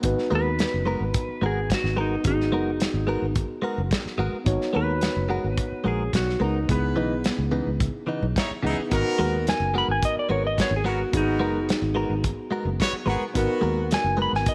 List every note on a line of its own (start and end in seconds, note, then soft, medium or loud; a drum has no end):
0.02 0.15 G#1 loud
0.02 2.20 B3 medium
0.02 2.21 D#4 medium
0.02 2.22 F#4 medium
0.02 2.22 B4 medium
0.02 kick loud
0.02 closed hi-hat medium
0.18 snare soft
0.30 0.64 D#2 medium
0.30 0.48 G#3 medium
0.30 0.48 B3 medium
0.30 0.48 F#4 medium
0.30 0.49 A#4 medium
0.35 1.41 B4 medium
0.59 snare loud
0.59 closed hi-hat medium
0.74 0.95 F#1 medium
0.85 1.03 G#3 medium
0.85 1.03 B3 medium
0.85 1.04 F#4 medium
0.85 1.04 A#4 medium
1.00 1.11 G#1 medium
1.14 kick loud
1.14 closed hi-hat medium
1.29 muted fingered electric bass stroke soft
1.41 1.74 G#1 medium
1.41 1.59 G#3 medium
1.41 1.59 B3 medium
1.41 1.59 F#4 medium
1.41 1.60 A#4 medium
1.46 1.71 G#4 medium
1.70 1.99 F#4 medium
1.70 kick medium
1.70 snare loud
1.70 closed hi-hat medium
1.84 2.16 G#1 loud
1.84 snare soft
1.96 2.14 G#3 medium
1.96 2.14 B3 medium
1.96 2.15 F#4 medium
1.96 2.15 A#4 medium
2.01 2.26 D#4 medium
2.23 2.53 G#1 loud
2.23 4.42 B3 medium
2.23 4.43 D#4 medium
2.23 3.34 D#4 medium
2.23 4.43 F#4 medium
2.23 4.44 G#4 medium
2.23 kick loud
2.23 closed hi-hat medium
2.41 snare soft
2.52 2.85 F#1 loud
2.52 2.69 G#3 medium
2.52 2.70 B3 medium
2.52 2.70 F#4 medium
2.52 2.70 A#4 medium
2.80 snare loud
2.80 closed hi-hat medium
2.94 3.16 G#1 medium
3.07 3.25 G#3 medium
3.07 3.25 B3 medium
3.07 3.25 F#4 medium
3.07 3.26 A#4 loud
3.22 3.44 G#1 medium
3.35 kick loud
3.35 closed hi-hat medium
3.62 3.80 G#3 medium
3.62 3.80 B3 medium
3.62 3.81 F#4 loud
3.62 3.81 A#4 medium
3.78 3.89 F#1 medium
3.91 kick medium
3.91 snare loud
3.91 closed hi-hat medium
4.06 muted fingered electric bass stroke soft
4.06 snare soft
4.18 4.30 G#1 medium
4.18 4.36 G#3 medium
4.18 4.36 B3 loud
4.18 4.36 F#4 medium
4.18 4.37 A#4 loud
4.44 4.57 G#1 loud
4.44 6.64 B3 medium
4.44 6.64 D#4 medium
4.44 6.65 F#4 medium
4.44 6.65 C#5 medium
4.44 kick loud
4.44 closed hi-hat medium
4.61 snare soft
4.73 5.08 D#2 loud
4.73 4.91 G#3 medium
4.73 4.91 B3 medium
4.73 4.92 F#4 medium
4.73 4.92 A#4 medium
4.73 5.83 B4 medium
5.01 snare loud
5.01 closed hi-hat medium
5.16 5.38 F#1 medium
5.29 5.46 G#3 medium
5.29 5.47 B3 medium
5.29 5.47 F#4 medium
5.29 5.47 A#4 medium
5.44 5.55 G#1 medium
5.57 kick loud
5.57 closed hi-hat medium
5.72 muted fingered electric bass stroke soft
5.84 6.11 A#1 medium
5.84 6.02 G#3 medium
5.84 6.02 B3 medium
5.84 6.02 F#4 medium
5.84 6.14 G#4 medium
5.84 6.03 A#4 medium
6.13 6.38 B1 medium
6.13 6.42 F#4 medium
6.13 kick medium
6.13 snare loud
6.13 closed hi-hat medium
6.29 snare soft
6.40 6.66 C#2 medium
6.40 6.57 G#3 medium
6.40 6.58 B3 medium
6.40 6.58 F#4 medium
6.40 6.58 A#4 medium
6.44 6.70 D#4 medium
6.67 6.97 C#2 loud
6.67 7.24 E3 medium
6.67 8.59 B3 medium
6.67 8.59 D#4 medium
6.67 8.60 E4 soft
6.67 8.60 G#4 medium
6.67 7.25 B4 medium
6.67 kick loud
6.67 closed hi-hat medium
6.71 7.78 B3 medium
6.96 7.29 B1 medium
6.96 7.13 C#3 medium
6.96 7.13 E3 medium
6.96 7.14 B3 medium
6.96 7.14 D#4 medium
7.24 snare loud
7.24 closed hi-hat medium
7.38 7.60 C#2 medium
7.51 7.69 C#3 medium
7.51 7.69 E3 medium
7.51 7.69 B3 medium
7.51 7.69 D#4 medium
7.67 7.88 C#2 medium
7.80 kick loud
7.80 closed hi-hat medium
8.07 8.24 C#3 medium
8.07 8.24 E3 medium
8.07 8.25 B3 medium
8.07 8.25 D#4 loud
8.22 8.33 B1 loud
8.36 8.50 D#4 medium
8.36 8.50 E4 medium
8.36 8.50 C#5 medium
8.36 kick medium
8.36 snare loud
8.36 closed hi-hat medium
8.51 muted fingered electric bass stroke soft
8.63 8.75 C#2 loud
8.63 8.80 C#3 loud
8.63 8.80 E3 loud
8.63 8.88 B3 medium
8.63 8.81 B3 loud
8.63 8.90 D#4 soft
8.63 8.81 D#4 loud
8.63 8.79 D#4 medium
8.63 8.92 E4 medium
8.63 8.79 E4 medium
8.63 8.92 G#4 medium
8.67 8.79 G#4 medium
8.79 muted fingered electric bass stroke soft
8.90 9.02 G#1 loud
8.90 11.09 B3 medium
8.90 9.46 B3 medium
8.90 11.09 D#4 medium
8.90 9.47 F#4 medium
8.90 11.10 F#4 medium
8.90 9.47 A#4 loud
8.90 11.10 A#4 medium
8.90 kick loud
8.90 closed hi-hat medium
9.19 9.51 D#2 medium
9.19 9.36 G#3 loud
9.19 9.36 B3 medium
9.19 9.36 F#4 loud
9.19 9.37 A#4 medium
9.47 9.75 G#5 medium
9.47 snare loud
9.47 closed hi-hat medium
9.60 9.82 F#1 medium
9.74 9.91 G#3 medium
9.74 9.91 B3 medium
9.74 9.92 F#4 medium
9.74 9.92 A#4 medium
9.78 9.90 B5 medium
9.88 9.99 G#1 medium
9.88 10.03 G#5 medium
10.02 10.17 D#5 medium
10.02 kick loud
10.02 closed hi-hat medium
10.16 10.31 D5 medium
10.16 muted fingered electric bass stroke soft
10.29 10.62 G#1 medium
10.29 10.46 G#3 medium
10.29 10.47 B3 medium
10.29 10.47 F#4 medium
10.29 10.47 A#4 medium
10.29 10.44 C#5 medium
10.47 10.59 D#5 medium
10.56 10.71 B3 medium
10.56 10.72 F#4 medium
10.56 10.72 G#4 medium
10.56 kick medium
10.56 snare loud
10.56 closed hi-hat medium
10.61 10.73 C#5 medium
10.71 11.03 G#1 loud
10.76 10.87 G#4 medium
10.84 11.02 G#3 medium
10.84 10.99 B3 medium
10.84 11.02 B3 medium
10.84 11.02 F#4 medium
10.84 11.00 F#4 medium
10.84 11.03 A#4 medium
10.84 11.00 A#4 medium
10.89 11.14 F#4 medium
11.12 11.40 G#1 loud
11.12 13.31 B3 medium
11.12 11.69 B3 medium
11.12 13.32 D#4 medium
11.12 13.32 F#4 soft
11.12 11.69 F#4 medium
11.12 13.33 G#4 medium
11.12 11.70 A#4 medium
11.12 kick loud
11.12 closed hi-hat medium
11.17 12.23 D#4 medium
11.40 11.73 F#1 medium
11.40 11.57 G#3 medium
11.40 11.58 B3 medium
11.40 11.58 F#4 medium
11.40 11.58 A#4 medium
11.69 snare loud
11.69 closed hi-hat medium
11.82 12.04 G#1 medium
11.95 12.13 G#3 medium
11.95 12.13 B3 medium
11.95 12.13 F#4 loud
11.95 12.14 A#4 medium
12.10 12.31 G#1 medium
12.24 kick loud
12.24 closed hi-hat medium
12.51 12.68 G#3 medium
12.51 12.69 B3 medium
12.51 12.69 F#4 medium
12.51 12.69 A#4 medium
12.65 12.76 F#1 medium
12.78 12.93 B3 medium
12.78 12.93 F#4 medium
12.78 12.94 C#5 loud
12.78 kick medium
12.78 snare loud
12.78 closed hi-hat medium
12.93 muted fingered electric bass stroke soft
13.06 13.18 G#1 loud
13.06 13.24 G#3 medium
13.06 13.24 B3 medium
13.06 13.22 B3 medium
13.06 13.25 F#4 loud
13.06 13.22 F#4 medium
13.06 13.22 G#4 medium
13.06 13.25 A#4 loud
13.34 13.46 G#1 medium
13.34 14.54 B3 medium
13.34 13.91 B3 medium
13.34 14.54 D#4 medium
13.34 13.91 F#4 medium
13.34 14.54 F#4 medium
13.34 14.54 A#4 medium
13.34 kick loud
13.34 closed hi-hat medium
13.61 13.95 D#2 medium
13.61 13.79 G#3 medium
13.61 13.79 B3 medium
13.61 13.80 F#4 loud
13.61 13.80 A#4 medium
13.91 14.20 G#5 medium
13.91 snare loud
13.91 closed hi-hat medium
14.04 14.26 F#1 medium
14.17 14.35 G#3 medium
14.17 14.35 B3 medium
14.17 14.35 F#4 medium
14.17 14.36 A#4 medium
14.22 14.34 B5 medium
14.33 14.43 G#1 medium
14.33 14.48 G#5 medium
14.33 snare soft
14.46 14.54 D#5 medium
14.46 kick loud
14.46 closed hi-hat medium